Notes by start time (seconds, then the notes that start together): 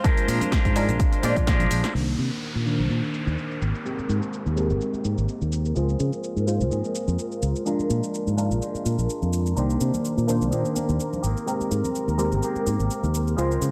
Already playing: C5
0.04 F3 G#3 D4 F4 A#4, kick, closed hi-hat, shaker
0.17 muted fingered electric bass stroke, closed hi-hat, shaker
0.28 A#2 F3 G#3 D4 F4, open hi-hat, shaker
0.40 G#3 D4 F4, closed hi-hat, high conga, low conga, maracas, shaker
0.52 F3 G#3 D4 F4, kick, snare, closed hi-hat, maracas, shaker
0.65 G#2, kick, closed hi-hat, maracas, shaker
0.75 F3 G#3 D4 F4 A#4, open hi-hat, high conga, shaker
0.88 A#1 G#3 D4 F4, closed hi-hat, high conga, maracas, shaker
1.00 kick, closed hi-hat, shaker
1.12 G#3 D4 F4, muted fingered electric bass stroke, closed hi-hat, shaker, maracas
1.22 A#2 F3 G#3 D4 F4 D5, open hi-hat, high conga, shaker
1.36 A#1 G#3, kick, closed hi-hat, shaker, maracas
1.47 A#1 F3 G#3 D4 F4, kick, snare, closed hi-hat, shaker
1.60 closed hi-hat, low conga, maracas, shaker
1.71 A#1, open hi-hat, shaker
1.83 G#3 D4 F4, snare, closed hi-hat, maracas, shaker
1.94 C2 D#3 A#3 D4 A#4 C5, downlifter, shaker
1.98 G4
2.08 shaker
2.18 C3, shaker
2.43 shaker
2.55 A#2
2.65 D#3 A#3 D4 C5, shaker
2.79 C2, shaker
2.89 A#2 D#3 A#3 D4 G4, shaker
3.03 shaker
3.13 D4 G4, shaker
3.27 D#2, shaker
3.38 shaker
3.51 shaker
3.60 G#1 A#3 C4 G4, shaker
3.65 D#3
3.75 shaker
3.85 G#3 C4 G4 A#4, shaker
3.99 muted fingered electric bass stroke, shaker
4.09 G#2, shaker
4.22 shaker
4.33 shaker
4.46 D#2, shaker
4.56 G#3 C4 G4 A#4, shaker
4.70 G#1, shaker
4.80 D#3 A#3 C4 G4, shaker
4.93 muted fingered electric bass stroke, shaker
5.04 G#2 A#3 C4 G4, shaker
5.18 G#1, shaker
5.29 shaker
5.41 D#2, shaker
5.52 shaker
5.65 shaker
5.74 C#2 F3 G#3 C4 F4 C5, shaker
5.79 G#4
5.89 shaker
6.00 C#3, shaker
6.13 shaker
6.24 shaker
6.36 G#2, shaker
6.46 G#3 F4 C5, shaker
6.60 C#2, shaker
6.70 G#2 F3 G#3 C4 G#4, shaker
6.84 shaker
6.94 G#3 C4 G#4, shaker
7.08 F2, shaker
7.19 shaker
7.32 shaker
7.42 C#2, shaker
7.56 shaker
7.65 F3 G#3 D4 F4 A#4, shaker
7.69 F4
7.79 muted fingered electric bass stroke, shaker
7.90 A#2, shaker
8.03 shaker
8.14 shaker
8.27 G#2, shaker
8.37 G#3 D4 F4 A#4, shaker
8.50 A#1, shaker
8.61 F3 G#3 D4 F4, shaker
8.74 muted fingered electric bass stroke, shaker
8.84 A#2 G#3 D4 F4, shaker
8.98 A#1, shaker
9.10 shaker
9.22 F2, shaker
9.33 shaker
9.46 shaker
9.55 C2 D#3 A#3 D4 A#4 C5, shaker
9.59 G4
9.70 shaker
9.81 C3, shaker
9.93 low conga, maracas, shaker
10.04 maracas, shaker
10.17 A#2, shaker
10.27 D#3 A#3 D4 C5, high conga, shaker
10.41 C2, high conga, shaker, maracas
10.51 A#2 D#3 A#3 D4 G4, shaker, maracas
10.65 shaker, maracas
10.75 A#3 D4 G4, high conga, shaker
10.89 D#2, maracas, shaker
11.00 shaker, maracas
11.13 low conga, maracas, shaker
11.22 G#1 A#3 C4 G4, shaker
11.27 D#3
11.37 maracas, shaker
11.46 G#3 C4 G4 A#4, shaker
11.60 muted fingered electric bass stroke, shaker
11.71 G#2, shaker
11.84 low conga, maracas, shaker
11.95 shaker, maracas
12.08 D#2, shaker
12.18 G#3 C4 G4 A#4, high conga, shaker
12.32 G#1, high conga, shaker, maracas
12.42 D#3 A#3 C4 G4, maracas, shaker
12.55 muted fingered electric bass stroke, shaker, maracas
12.66 G#2 A#3 C4 G4, high conga, shaker
12.79 G#1, maracas, shaker
12.91 shaker, maracas
13.03 D#2, low conga, maracas, shaker
13.15 shaker
13.27 maracas, shaker
13.36 C#2 F3 G#3 C4 F4 C5, shaker
13.41 F4
13.51 shaker
13.61 C#3, shaker